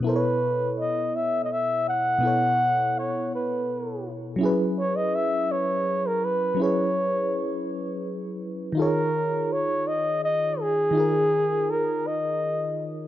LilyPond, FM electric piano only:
\new Staff \with { instrumentName = "FM electric piano" } { \time 6/8 \key ees \phrygian \tempo 4. = 55 <b, b e' a' c'' cis''>2. | <b, b e' a' cis''>2. | <ges des' fes' aes' ces''>2. | <ges des' fes' aes' ces''>2. |
<ees ees' f' aes' des''>2. | <ees ees' f' aes' bes'>2. | }